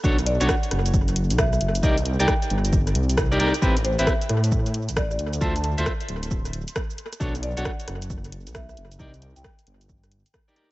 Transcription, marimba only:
0, 0, Header, 1, 2, 480
1, 0, Start_track
1, 0, Tempo, 447761
1, 44, Time_signature, 4, 2, 24, 8
1, 11491, End_track
2, 0, Start_track
2, 0, Title_t, "Marimba"
2, 0, Program_c, 0, 12
2, 282, Note_on_c, 0, 74, 92
2, 406, Note_off_c, 0, 74, 0
2, 437, Note_on_c, 0, 78, 86
2, 492, Note_off_c, 0, 78, 0
2, 523, Note_on_c, 0, 78, 79
2, 622, Note_off_c, 0, 78, 0
2, 1485, Note_on_c, 0, 76, 91
2, 1583, Note_off_c, 0, 76, 0
2, 1639, Note_on_c, 0, 76, 81
2, 1693, Note_off_c, 0, 76, 0
2, 1966, Note_on_c, 0, 75, 92
2, 2184, Note_off_c, 0, 75, 0
2, 2359, Note_on_c, 0, 79, 91
2, 2413, Note_off_c, 0, 79, 0
2, 4122, Note_on_c, 0, 72, 94
2, 4246, Note_off_c, 0, 72, 0
2, 4278, Note_on_c, 0, 76, 91
2, 4333, Note_off_c, 0, 76, 0
2, 5325, Note_on_c, 0, 74, 89
2, 5423, Note_off_c, 0, 74, 0
2, 5480, Note_on_c, 0, 74, 77
2, 5534, Note_off_c, 0, 74, 0
2, 5806, Note_on_c, 0, 81, 94
2, 5903, Note_off_c, 0, 81, 0
2, 5961, Note_on_c, 0, 81, 84
2, 6014, Note_off_c, 0, 81, 0
2, 6047, Note_on_c, 0, 81, 95
2, 6169, Note_off_c, 0, 81, 0
2, 6200, Note_on_c, 0, 84, 92
2, 6525, Note_off_c, 0, 84, 0
2, 7964, Note_on_c, 0, 74, 98
2, 8087, Note_off_c, 0, 74, 0
2, 8117, Note_on_c, 0, 78, 92
2, 8172, Note_off_c, 0, 78, 0
2, 9163, Note_on_c, 0, 76, 92
2, 9262, Note_off_c, 0, 76, 0
2, 9320, Note_on_c, 0, 76, 82
2, 9374, Note_off_c, 0, 76, 0
2, 9644, Note_on_c, 0, 75, 94
2, 9863, Note_off_c, 0, 75, 0
2, 10036, Note_on_c, 0, 79, 92
2, 10092, Note_off_c, 0, 79, 0
2, 11491, End_track
0, 0, End_of_file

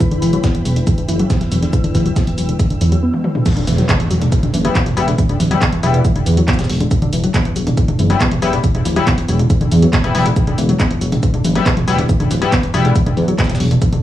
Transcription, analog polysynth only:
0, 0, Header, 1, 2, 480
1, 0, Start_track
1, 0, Key_signature, 1, "minor"
1, 0, Tempo, 431655
1, 6, Time_signature, 4, 2, 24, 8
1, 15598, End_track
2, 0, Start_track
2, 0, Title_t, "Analog polysynth"
2, 0, Program_c, 0, 90
2, 5167, Note_on_c, 0, 55, 82
2, 5167, Note_on_c, 0, 59, 78
2, 5167, Note_on_c, 0, 64, 94
2, 5277, Note_off_c, 0, 55, 0
2, 5277, Note_off_c, 0, 59, 0
2, 5277, Note_off_c, 0, 64, 0
2, 5525, Note_on_c, 0, 55, 99
2, 5525, Note_on_c, 0, 59, 89
2, 5526, Note_on_c, 0, 64, 106
2, 5638, Note_off_c, 0, 55, 0
2, 5638, Note_off_c, 0, 59, 0
2, 5638, Note_off_c, 0, 64, 0
2, 6127, Note_on_c, 0, 55, 97
2, 6127, Note_on_c, 0, 59, 88
2, 6127, Note_on_c, 0, 64, 105
2, 6237, Note_off_c, 0, 55, 0
2, 6237, Note_off_c, 0, 59, 0
2, 6237, Note_off_c, 0, 64, 0
2, 6486, Note_on_c, 0, 55, 96
2, 6486, Note_on_c, 0, 59, 89
2, 6486, Note_on_c, 0, 64, 105
2, 6664, Note_off_c, 0, 55, 0
2, 6664, Note_off_c, 0, 59, 0
2, 6664, Note_off_c, 0, 64, 0
2, 9007, Note_on_c, 0, 55, 82
2, 9007, Note_on_c, 0, 59, 76
2, 9007, Note_on_c, 0, 64, 91
2, 9117, Note_off_c, 0, 55, 0
2, 9117, Note_off_c, 0, 59, 0
2, 9117, Note_off_c, 0, 64, 0
2, 9366, Note_on_c, 0, 55, 102
2, 9366, Note_on_c, 0, 59, 93
2, 9366, Note_on_c, 0, 64, 111
2, 9478, Note_off_c, 0, 55, 0
2, 9478, Note_off_c, 0, 59, 0
2, 9478, Note_off_c, 0, 64, 0
2, 9967, Note_on_c, 0, 55, 93
2, 9967, Note_on_c, 0, 59, 90
2, 9967, Note_on_c, 0, 64, 107
2, 10077, Note_off_c, 0, 55, 0
2, 10077, Note_off_c, 0, 59, 0
2, 10077, Note_off_c, 0, 64, 0
2, 11167, Note_on_c, 0, 55, 80
2, 11167, Note_on_c, 0, 59, 71
2, 11167, Note_on_c, 0, 64, 88
2, 11268, Note_off_c, 0, 55, 0
2, 11268, Note_off_c, 0, 59, 0
2, 11268, Note_off_c, 0, 64, 0
2, 11285, Note_on_c, 0, 55, 101
2, 11285, Note_on_c, 0, 59, 94
2, 11285, Note_on_c, 0, 64, 113
2, 11398, Note_off_c, 0, 55, 0
2, 11398, Note_off_c, 0, 59, 0
2, 11398, Note_off_c, 0, 64, 0
2, 12847, Note_on_c, 0, 55, 86
2, 12847, Note_on_c, 0, 59, 77
2, 12847, Note_on_c, 0, 64, 92
2, 12957, Note_off_c, 0, 55, 0
2, 12957, Note_off_c, 0, 59, 0
2, 12957, Note_off_c, 0, 64, 0
2, 13205, Note_on_c, 0, 55, 96
2, 13205, Note_on_c, 0, 59, 89
2, 13205, Note_on_c, 0, 64, 108
2, 13318, Note_off_c, 0, 55, 0
2, 13318, Note_off_c, 0, 59, 0
2, 13318, Note_off_c, 0, 64, 0
2, 13806, Note_on_c, 0, 55, 99
2, 13807, Note_on_c, 0, 59, 88
2, 13807, Note_on_c, 0, 64, 107
2, 13917, Note_off_c, 0, 55, 0
2, 13917, Note_off_c, 0, 59, 0
2, 13917, Note_off_c, 0, 64, 0
2, 14165, Note_on_c, 0, 55, 94
2, 14165, Note_on_c, 0, 59, 87
2, 14165, Note_on_c, 0, 64, 106
2, 14344, Note_off_c, 0, 55, 0
2, 14344, Note_off_c, 0, 59, 0
2, 14344, Note_off_c, 0, 64, 0
2, 15598, End_track
0, 0, End_of_file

